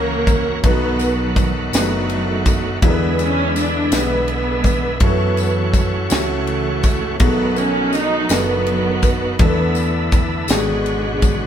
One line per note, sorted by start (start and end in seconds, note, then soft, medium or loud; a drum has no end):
0.00 0.59 C#2 medium
0.00 0.60 C#3 medium
0.00 0.60 E3 medium
0.00 0.59 F#3 medium
0.00 0.65 A#3 loud
0.00 0.59 C#4 medium
0.00 0.66 C#4 medium
0.00 0.66 E4 medium
0.00 0.59 F#4 medium
0.00 0.64 F#4 medium
0.00 0.65 A4 medium
0.00 0.59 A#4 medium
0.00 0.65 A#4 medium
0.00 0.65 C#5 medium
0.00 0.44 E5 medium
0.27 kick loud
0.27 ride soft
0.27 tambourine medium
0.63 1.69 B1 loud
0.63 1.69 B2 medium
0.63 1.70 D#3 medium
0.63 2.80 D#3 medium
0.63 1.69 F#3 medium
0.63 2.79 F#3 medium
0.63 2.79 A3 medium
0.63 1.53 B3 medium
0.63 2.79 B3 medium
0.63 1.33 B3 medium
0.63 1.54 D#4 medium
0.63 1.54 F#4 medium
0.63 2.79 F#4 medium
0.63 1.54 A4 medium
0.63 1.54 B4 medium
0.63 kick loud
0.63 ride medium
0.99 ride soft
0.99 tambourine soft
1.36 kick loud
1.36 ride soft
1.36 tambourine medium
1.73 2.78 F#1 loud
1.73 2.80 D#3 medium
1.73 2.80 F#3 medium
1.73 2.80 A3 medium
1.73 2.63 B3 medium
1.73 1.80 D4 soft
1.73 2.63 F#4 medium
1.73 2.64 A4 medium
1.73 2.64 B4 medium
1.73 snare loud
1.73 ride medium
1.73 tambourine medium
1.79 2.66 D#4 medium
2.10 ride soft
2.46 kick loud
2.46 ride soft
2.46 tambourine medium
2.82 3.88 E2 loud
2.82 3.73 D3 medium
2.82 4.98 D3 medium
2.82 3.89 D3 medium
2.82 3.88 E3 medium
2.82 4.98 E3 medium
2.82 4.98 G#3 medium
2.82 3.89 G#3 medium
2.82 3.72 B3 medium
2.82 4.98 B3 medium
2.82 3.21 B3 medium
2.82 3.73 E4 medium
2.82 4.98 E4 medium
2.82 3.73 G#4 medium
2.82 2.90 A#4 medium
2.82 kick loud
2.82 ride medium
2.90 3.77 B4 medium
3.19 3.54 C#4 loud
3.19 ride soft
3.19 tambourine soft
3.56 3.94 D4 loud
3.56 snare soft
3.56 ride soft
3.56 tambourine medium
3.92 4.98 B1 loud
3.92 4.99 D3 medium
3.92 4.99 G#3 medium
3.92 4.82 B3 medium
3.92 4.82 D4 medium
3.92 4.82 E4 medium
3.92 4.83 G#4 medium
3.92 4.83 B4 medium
3.92 snare loud
3.92 ride medium
3.92 tambourine medium
3.96 5.02 B3 loud
4.28 ride soft
4.64 kick loud
4.64 ride soft
4.64 tambourine medium
5.00 6.07 F#2 loud
5.00 7.17 E3 medium
5.00 6.08 E3 medium
5.00 7.16 F#3 medium
5.00 7.16 A3 medium
5.00 5.92 A3 medium
5.00 5.72 B3 medium
5.00 7.16 C#4 medium
5.00 5.92 C#4 medium
5.00 5.92 E4 medium
5.00 7.16 F#4 medium
5.00 5.92 F#4 medium
5.00 5.92 A4 medium
5.00 kick loud
5.00 ride medium
5.37 ride soft
5.37 tambourine soft
5.74 kick loud
5.74 ride soft
5.74 tambourine medium
6.09 7.20 C#2 medium
6.09 7.18 C#3 medium
6.09 7.17 E3 medium
6.09 7.00 A3 medium
6.09 7.01 C#4 medium
6.09 7.01 E4 medium
6.09 7.01 F#4 medium
6.09 7.02 A4 medium
6.09 snare loud
6.09 ride medium
6.09 tambourine medium
6.14 7.18 A3 medium
6.47 ride soft
6.83 kick medium
6.83 ride soft
6.83 tambourine medium
7.19 8.26 B1 loud
7.19 8.26 B2 medium
7.19 7.27 C#3 soft
7.19 8.27 D#3 medium
7.19 9.36 F#3 medium
7.19 8.27 F#3 medium
7.19 8.10 A3 medium
7.19 9.36 A3 medium
7.19 8.10 B3 medium
7.19 9.36 B3 medium
7.19 7.58 B3 loud
7.19 8.11 D#4 medium
7.19 9.36 F#4 medium
7.19 8.11 F#4 medium
7.19 7.27 G#4 medium
7.19 kick loud
7.19 ride medium
7.26 9.39 D#3 medium
7.26 8.14 A4 medium
7.56 7.94 C#4 loud
7.56 ride soft
7.56 tambourine soft
7.93 8.31 D#4 loud
7.93 ride soft
7.93 tambourine medium
8.28 9.36 F#1 medium
8.28 9.37 D#3 medium
8.28 9.20 A3 medium
8.28 9.20 B3 medium
8.28 9.41 B3 loud
8.28 8.37 D4 soft
8.28 9.20 F#4 medium
8.28 9.21 A4 medium
8.28 snare medium
8.28 ride medium
8.28 tambourine medium
8.33 9.37 F#3 medium
8.33 9.24 D#4 medium
8.67 ride soft
9.02 kick medium
9.02 ride soft
9.02 tambourine medium
9.38 10.46 E2 loud
9.38 10.49 D3 medium
9.38 10.49 E3 medium
9.38 10.46 E3 medium
9.38 10.49 A3 medium
9.38 10.30 A3 medium
9.38 10.49 B3 medium
9.38 10.30 B3 medium
9.38 10.30 D4 medium
9.38 10.49 E4 medium
9.38 10.30 E4 medium
9.38 10.30 A4 loud
9.38 kick loud
9.38 ride medium
9.43 10.47 D3 medium
9.43 10.11 B3 medium
9.75 ride soft
9.75 tambourine soft
10.12 kick loud
10.12 ride soft
10.12 tambourine medium
10.48 11.47 G#1 loud
10.48 11.47 G#2 medium
10.48 11.47 D3 medium
10.48 11.47 F#3 medium
10.48 11.39 G#3 medium
10.48 11.47 G#3 medium
10.48 10.57 A3 soft
10.48 11.40 B3 medium
10.48 11.40 D4 medium
10.48 11.47 F#4 medium
10.48 11.40 F#4 medium
10.48 11.41 G#4 medium
10.48 snare loud
10.48 ride medium
10.48 tambourine medium
10.53 11.47 B2 medium
10.53 11.47 D3 medium
10.53 11.47 G#3 medium
10.57 11.47 B3 medium
10.86 ride soft
11.22 kick loud
11.22 ride soft
11.22 tambourine medium